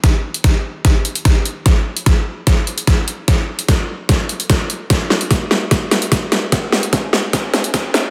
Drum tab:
HH |x--xx---x-xxx-x-|x--xx---x-xxx-x-|x--xx---x-xxx-x-|x--xx---x-xxx-x-|
SD |o---o---o---o---|o---o---o---o---|o---o---o---o---|o-o-o-o-o-o-o-o-|
BD |o---o---o---o---|o---o---o---o---|o---o---o---o---|o---o---o---o---|

HH |x--xx---x-xxx-x-|
SD |o-o-o-o-o-o-o-o-|
BD |o---o---o---o---|